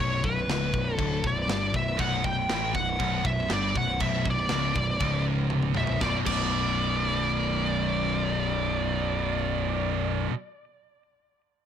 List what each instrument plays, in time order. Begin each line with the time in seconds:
0.00 picked electric bass B0, distorted electric guitar B1, lead electric guitar C#5
0.23 picked electric bass B0, distorted electric guitar B1, lead electric guitar B4, kick
0.48 picked electric bass C#1, distorted electric guitar C#2, snare, crash
0.73 picked electric bass B0, distorted electric guitar B1, kick
0.96 picked electric bass D1, distorted electric guitar D2, lead electric guitar A4, kick, crash
1.23 picked electric bass B0, distorted electric guitar B1, kick
1.27 lead electric guitar D5
1.48 picked electric bass G1, distorted electric guitar G2, snare, crash
1.73 picked electric bass B0, distorted electric guitar B1, lead electric guitar E5, kick
1.99 picked electric bass B0, distorted electric guitar B1, lead electric guitar F#5, kick, crash
2.24 picked electric bass B0, distorted electric guitar B1, lead electric guitar G5, kick
2.49 picked electric bass A1, distorted electric guitar A2, snare, crash
2.75 picked electric bass B0, distorted electric guitar B1, lead electric guitar F#5, kick
3.00 picked electric bass B0, distorted electric guitar B1, kick, crash
3.24 picked electric bass B0, distorted electric guitar B1, lead electric guitar E5, kick
3.50 picked electric bass G1, distorted electric guitar G2, lead electric guitar D5, snare, crash
3.74 picked electric bass B0, distorted electric guitar B1, lead electric guitar F#5, kick
3.98 picked electric bass B0, distorted electric guitar B1, lead electric guitar E5, kick, crash
4.25 picked electric bass B0, distorted electric guitar B1, kick
4.31 lead electric guitar D5
4.48 picked electric bass C#1, distorted electric guitar C#2, snare, crash
4.73 picked electric bass B0, distorted electric guitar B1, kick
4.77 distorted electric guitar B1
5.00 picked electric bass C#1, distorted electric guitar C#2, kick, crash
5.50 high tom
5.62 mid tom
5.74 picked electric bass B0, distorted electric guitar B1, lead electric guitar E5, mid tom
5.87 floor tom
5.98 picked electric bass B0, distorted electric guitar B1 F#2 B2, lead electric guitar D5, kick, snare
6.24 picked electric bass B0, distorted electric guitar B1 F#2, lead electric guitar D5, kick, crash
6.28 distorted electric guitar B2